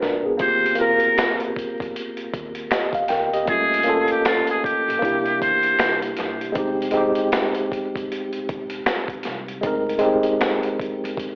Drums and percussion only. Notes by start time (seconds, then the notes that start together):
0.03 snare
0.39 kick, closed hi-hat
0.66 closed hi-hat
0.76 closed hi-hat
1.00 closed hi-hat
1.18 finger snap, snare, closed hi-hat
1.40 closed hi-hat
1.56 kick, closed hi-hat
1.80 kick, closed hi-hat
1.96 closed hi-hat
2.17 closed hi-hat
2.33 kick, closed hi-hat
2.55 closed hi-hat
2.71 finger snap, snare, closed hi-hat
2.93 kick, closed hi-hat
3.08 snare, closed hi-hat
3.33 closed hi-hat
3.47 kick, closed hi-hat
3.74 closed hi-hat
3.83 closed hi-hat
4.08 closed hi-hat
4.25 finger snap, snare, closed hi-hat
4.47 closed hi-hat
4.64 kick, closed hi-hat
4.90 closed hi-hat
5.02 kick, closed hi-hat
5.25 closed hi-hat
5.42 kick, closed hi-hat
5.63 closed hi-hat
5.79 finger snap, snare, closed hi-hat
6.03 closed hi-hat
6.17 snare, closed hi-hat
6.41 closed hi-hat
6.55 kick, closed hi-hat
6.82 closed hi-hat
6.91 closed hi-hat
7.15 closed hi-hat
7.32 finger snap, snare, closed hi-hat
7.55 closed hi-hat
7.72 kick, closed hi-hat
7.96 kick, closed hi-hat
8.12 closed hi-hat
8.33 closed hi-hat
8.49 kick, closed hi-hat
8.70 closed hi-hat
8.86 finger snap, snare, closed hi-hat
9.08 kick, closed hi-hat
9.23 snare, closed hi-hat
9.48 closed hi-hat
9.63 kick, closed hi-hat
9.89 closed hi-hat
9.99 closed hi-hat
10.23 closed hi-hat
10.41 finger snap, snare, closed hi-hat
10.63 closed hi-hat
10.80 kick, closed hi-hat
11.05 closed hi-hat
11.17 kick, closed hi-hat